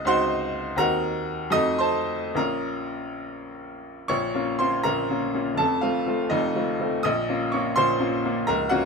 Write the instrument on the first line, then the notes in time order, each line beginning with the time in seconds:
upright piano
Already playing: C#2 C4 D#4 F#4 D#5 F5 D#6 F6
0.05 C#2 C4 D#4 F#4 C5 F#5 C6
0.76 D#2 C4 D#4 F#4 A#4 F#5 A#5
1.50 F2 A3 D#4 F#4 D#5 D#6
1.78 C5 A5 C6
2.35 A#1 A#3 C#4 F4 A#4 F5 A#5
4.08 A#1 A#2 C#5 C#6
4.34 A#3 C#4 F4
4.59 A#3 C#4 F4 C5 C6
4.83 A#1 A#2 A#4 A#5
5.10 A#3 C#4 F4
5.34 A#3 C#4 F4
5.54 F1 A5
5.59 F2 A4
5.81 A3 C4 F4 F5
6.06 A3 C4 F4
6.30 F1 F2 D#4 D#5
6.55 A3 C4 F4
6.80 A3 C4 F4
7.03 A#1 A#2 D#5 D#6
7.29 A#3 C#4 F4
7.52 A#3 C#4 F4 C#5 C#6
7.76 A#1 A#2 C5 C6
8.00 A#3 C#4 F4
8.25 A#3 C#4 F4
8.47 C#1 C#2 A#4 A#5
8.69 A#3 C#4 F4 F#4 F#5